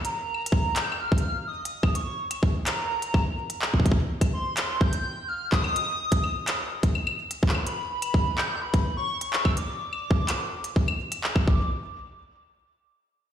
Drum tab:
HH |x--------------------x--------------x--------------------x-----------------------x--------------|x-----------------x-----------------x-----------------x-----------------------x-----------------|x-----------------x-----------------x-----------------x-----------------------------------------|x-----------------x-----------------x-----------------x-----------------------x-----------------|
CL |---------------x--------------------x---x---x---------------------------------------------x-----|------------------x-----------------x-----------------------x-----------------------------------|------------------x-----------------x-----------------------------------------------------x-----|------------------------x-----------x-----------------------x-----x-----------------------x-----|
CP |------------------------------------x-----------------------------------------------------------|------------------------------------x-----------------------------------------------x-----------|------------------------------------x-----------------------------------------------x-----------|------------------------------------x--------------------------------------------------x--------|
BD |------------------------o-----------------------------o-----------------------------------o-----|------------------------o-----------------------------------o-----------------------------o--o--|o--o--------------o-----------------------------o-----------------------------------o-----------|------------------o-----------------------------------o-----------------------------o-----------|

HH |x-----------------x-----------------------------------x-----------------------x-----------------|x-----------------------------------x-----------------x-----------------------x-----------------|------------------------------------------------------------------------------------------------|
CL |------------------x-----------------x-----------------------------------------------------x-----|------------------x-----------------x-----------------------------x-----------x-----------x-----|------------------------------------------------------------------------------------------------|
CP |------------------------------------x-----------------------------------------------x-----------|------------------------------------x-----------------------------------------------x-----------|------------------------------------------------------------------------------------------------|
BD |------------------------o-----------------------------o-----------------------------------o-----|---------------------------o--------------------------------o-----------------------------o-----|o-----------------------------------------------------------------------------------------------|